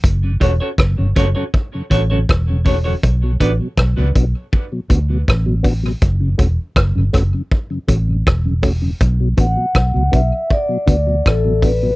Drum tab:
HH |px-x-x-o|px-x-x-o|px-x-x-o|px-x-x-o|
SD |--r---r-|--r---r-|--rr--r-|--r---r-|
BD |oooooooo|oooooooo|oooooooo|oooooooo|